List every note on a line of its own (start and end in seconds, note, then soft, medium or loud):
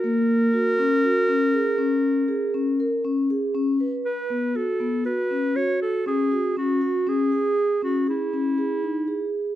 0.00 0.46 A#3 medium
0.00 3.01 A#4 loud
0.54 0.75 F#4 medium
0.79 1.00 C#4 medium
1.04 1.25 F#4 medium
1.29 1.50 C#4 medium
1.54 1.75 G#4 medium
1.78 2.21 C#4 medium
2.28 2.50 G#4 medium
2.54 2.76 C#4 medium
2.80 3.01 A#4 medium
3.04 3.26 C#4 medium
3.30 3.51 G#4 medium
3.55 3.76 C#4 medium
3.80 4.23 B4 medium
4.05 4.58 B4 medium
4.30 4.52 B3 medium
4.55 4.77 F#4 medium
4.55 5.05 A4 medium
4.80 5.02 B3 medium
5.05 5.27 F#4 medium
5.05 5.57 B4 medium
5.31 5.52 C#4 medium
5.56 5.99 F#4 medium
5.56 5.81 C#5 medium
5.82 6.05 A4 medium
6.06 6.28 C#4 medium
6.06 6.54 G#4 medium
6.32 6.53 F#4 medium
6.57 6.78 C#4 medium
6.57 7.10 F#4 medium
6.81 7.03 F#4 medium
7.07 7.28 C#4 medium
7.07 7.83 G#4 medium
7.32 7.75 G#4 medium
7.82 8.04 C#4 medium
7.82 8.06 F#4 medium
8.07 9.55 E4 medium
8.07 8.29 G#4 medium
8.34 8.54 C#4 medium
8.58 8.79 G#4 medium
8.83 9.04 D#4 medium
9.08 9.50 G#4 medium